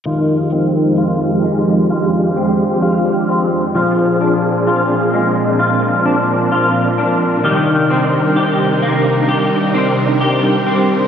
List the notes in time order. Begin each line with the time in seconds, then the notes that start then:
0.05 F2 D#3 F3 G#3 D#4 F4 G4
0.52 C4
0.98 F4
1.44 G#3
1.90 D4 F4
2.36 C4
2.82 F4
3.29 C4
3.75 A#2 F3 C4 F4 G#4
4.21 D4
4.67 F4
5.13 G#3
5.59 F4 A#4
6.05 D4
6.52 F4
6.98 D4
7.44 C3 D#3 G3 D#4 G4
7.90 C4
8.36 G4
8.82 A#3
9.29 G4
9.74 C4
10.21 G4
10.66 C4